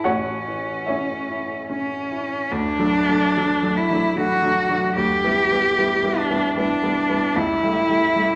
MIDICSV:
0, 0, Header, 1, 3, 480
1, 0, Start_track
1, 0, Key_signature, 2, "major"
1, 0, Tempo, 828729
1, 24, Time_signature, 3, 2, 24, 8
1, 1944, Tempo, 798935
1, 4946, End_track
2, 0, Start_track
2, 0, Title_t, "Cello"
2, 0, Program_c, 0, 42
2, 25, Note_on_c, 0, 61, 59
2, 982, Note_off_c, 0, 61, 0
2, 985, Note_on_c, 0, 61, 69
2, 1462, Note_on_c, 0, 62, 95
2, 1471, Note_off_c, 0, 61, 0
2, 2191, Note_on_c, 0, 64, 89
2, 2200, Note_off_c, 0, 62, 0
2, 2435, Note_on_c, 0, 66, 93
2, 2444, Note_off_c, 0, 64, 0
2, 2904, Note_off_c, 0, 66, 0
2, 2908, Note_on_c, 0, 67, 96
2, 3641, Note_on_c, 0, 62, 87
2, 3650, Note_off_c, 0, 67, 0
2, 3872, Note_off_c, 0, 62, 0
2, 3884, Note_on_c, 0, 62, 85
2, 4352, Note_on_c, 0, 64, 100
2, 4361, Note_off_c, 0, 62, 0
2, 4946, Note_off_c, 0, 64, 0
2, 4946, End_track
3, 0, Start_track
3, 0, Title_t, "Grand piano"
3, 0, Program_c, 1, 0
3, 0, Control_c, 1, 64, 127
3, 25, Note_on_c, 1, 78, 76
3, 29, Note_on_c, 1, 66, 55
3, 29, Note_on_c, 1, 73, 58
3, 34, Control_c, 1, 64, 0
3, 35, Note_on_c, 1, 33, 46
3, 128, Control_c, 1, 64, 127
3, 278, Note_on_c, 1, 52, 33
3, 492, Note_off_c, 1, 66, 0
3, 492, Note_off_c, 1, 73, 0
3, 499, Note_on_c, 1, 76, 57
3, 508, Note_on_c, 1, 64, 39
3, 511, Note_on_c, 1, 73, 45
3, 514, Note_off_c, 1, 78, 0
3, 516, Note_on_c, 1, 61, 41
3, 659, Note_off_c, 1, 52, 0
3, 747, Note_off_c, 1, 64, 0
3, 755, Note_on_c, 1, 64, 39
3, 892, Note_off_c, 1, 61, 0
3, 982, Note_on_c, 1, 61, 40
3, 1125, Note_off_c, 1, 64, 0
3, 1191, Note_off_c, 1, 73, 0
3, 1208, Note_off_c, 1, 76, 0
3, 1223, Note_on_c, 1, 64, 35
3, 1357, Note_off_c, 1, 61, 0
3, 1437, Note_off_c, 1, 33, 0
3, 1455, Note_on_c, 1, 38, 62
3, 1459, Note_off_c, 1, 64, 0
3, 1467, Control_c, 1, 64, 0
3, 1554, Control_c, 1, 64, 127
3, 1614, Note_off_c, 1, 38, 0
3, 1616, Note_on_c, 1, 54, 50
3, 1620, Note_on_c, 1, 57, 50
3, 1621, Note_on_c, 1, 62, 50
3, 1765, Note_off_c, 1, 54, 0
3, 1767, Note_off_c, 1, 57, 0
3, 1768, Note_off_c, 1, 62, 0
3, 1788, Note_on_c, 1, 54, 40
3, 1794, Note_on_c, 1, 57, 44
3, 1797, Note_on_c, 1, 62, 49
3, 1931, Note_off_c, 1, 54, 0
3, 1934, Note_off_c, 1, 57, 0
3, 1935, Note_off_c, 1, 62, 0
3, 1953, Note_on_c, 1, 57, 47
3, 1954, Note_on_c, 1, 54, 47
3, 1956, Note_on_c, 1, 62, 48
3, 2095, Note_off_c, 1, 54, 0
3, 2095, Note_off_c, 1, 57, 0
3, 2097, Note_off_c, 1, 62, 0
3, 2107, Note_on_c, 1, 54, 46
3, 2110, Note_on_c, 1, 57, 44
3, 2110, Note_on_c, 1, 62, 52
3, 2250, Note_off_c, 1, 54, 0
3, 2251, Note_off_c, 1, 57, 0
3, 2252, Note_off_c, 1, 62, 0
3, 2275, Note_on_c, 1, 54, 44
3, 2280, Note_on_c, 1, 57, 44
3, 2282, Note_on_c, 1, 62, 52
3, 2413, Note_off_c, 1, 54, 0
3, 2416, Note_off_c, 1, 57, 0
3, 2416, Note_off_c, 1, 62, 0
3, 2427, Note_on_c, 1, 54, 42
3, 2433, Note_on_c, 1, 57, 47
3, 2433, Note_on_c, 1, 62, 50
3, 2567, Note_off_c, 1, 54, 0
3, 2571, Note_off_c, 1, 57, 0
3, 2571, Note_off_c, 1, 62, 0
3, 2585, Note_on_c, 1, 54, 47
3, 2588, Note_on_c, 1, 57, 46
3, 2596, Note_on_c, 1, 62, 50
3, 2727, Note_off_c, 1, 54, 0
3, 2729, Note_off_c, 1, 57, 0
3, 2733, Note_off_c, 1, 62, 0
3, 2744, Note_on_c, 1, 54, 42
3, 2748, Note_on_c, 1, 57, 43
3, 2749, Note_on_c, 1, 62, 46
3, 2889, Note_off_c, 1, 54, 0
3, 2892, Note_off_c, 1, 57, 0
3, 2892, Note_off_c, 1, 62, 0
3, 2910, Note_on_c, 1, 38, 63
3, 2914, Control_c, 1, 64, 0
3, 3010, Control_c, 1, 64, 127
3, 3067, Note_off_c, 1, 38, 0
3, 3077, Note_on_c, 1, 55, 46
3, 3077, Note_on_c, 1, 59, 49
3, 3078, Note_on_c, 1, 64, 54
3, 3222, Note_off_c, 1, 55, 0
3, 3222, Note_off_c, 1, 59, 0
3, 3223, Note_off_c, 1, 64, 0
3, 3242, Note_on_c, 1, 55, 43
3, 3245, Note_on_c, 1, 59, 44
3, 3247, Note_on_c, 1, 64, 44
3, 3385, Note_off_c, 1, 55, 0
3, 3386, Note_off_c, 1, 59, 0
3, 3387, Note_off_c, 1, 64, 0
3, 3401, Note_on_c, 1, 55, 50
3, 3403, Note_on_c, 1, 59, 51
3, 3408, Note_on_c, 1, 64, 53
3, 3542, Note_off_c, 1, 55, 0
3, 3543, Note_off_c, 1, 59, 0
3, 3546, Note_off_c, 1, 64, 0
3, 3554, Note_on_c, 1, 55, 52
3, 3557, Note_on_c, 1, 59, 49
3, 3560, Note_on_c, 1, 64, 53
3, 3696, Note_off_c, 1, 55, 0
3, 3698, Note_off_c, 1, 59, 0
3, 3699, Note_off_c, 1, 64, 0
3, 3714, Note_on_c, 1, 55, 47
3, 3717, Note_on_c, 1, 59, 49
3, 3720, Note_on_c, 1, 64, 53
3, 3854, Note_off_c, 1, 55, 0
3, 3856, Note_off_c, 1, 59, 0
3, 3858, Note_off_c, 1, 64, 0
3, 3872, Note_on_c, 1, 55, 49
3, 3878, Note_on_c, 1, 59, 47
3, 3881, Note_on_c, 1, 64, 55
3, 4013, Note_off_c, 1, 55, 0
3, 4016, Note_off_c, 1, 59, 0
3, 4018, Note_off_c, 1, 64, 0
3, 4031, Note_on_c, 1, 55, 51
3, 4035, Note_on_c, 1, 59, 45
3, 4035, Note_on_c, 1, 64, 49
3, 4173, Note_off_c, 1, 55, 0
3, 4175, Note_off_c, 1, 59, 0
3, 4175, Note_off_c, 1, 64, 0
3, 4190, Note_on_c, 1, 59, 44
3, 4191, Note_on_c, 1, 55, 42
3, 4194, Note_on_c, 1, 64, 47
3, 4333, Note_off_c, 1, 59, 0
3, 4334, Note_off_c, 1, 55, 0
3, 4336, Note_off_c, 1, 64, 0
3, 4350, Note_on_c, 1, 37, 67
3, 4360, Control_c, 1, 64, 0
3, 4459, Control_c, 1, 64, 127
3, 4505, Note_off_c, 1, 37, 0
3, 4512, Note_on_c, 1, 57, 48
3, 4513, Note_on_c, 1, 55, 51
3, 4514, Note_on_c, 1, 64, 54
3, 4655, Note_off_c, 1, 55, 0
3, 4655, Note_off_c, 1, 57, 0
3, 4655, Note_off_c, 1, 64, 0
3, 4668, Note_on_c, 1, 55, 43
3, 4671, Note_on_c, 1, 57, 45
3, 4672, Note_on_c, 1, 64, 47
3, 4810, Note_off_c, 1, 55, 0
3, 4812, Note_off_c, 1, 57, 0
3, 4812, Note_off_c, 1, 64, 0
3, 4829, Note_on_c, 1, 55, 51
3, 4830, Note_on_c, 1, 57, 54
3, 4833, Note_on_c, 1, 64, 60
3, 4946, Note_off_c, 1, 55, 0
3, 4946, Note_off_c, 1, 57, 0
3, 4946, Note_off_c, 1, 64, 0
3, 4946, End_track
0, 0, End_of_file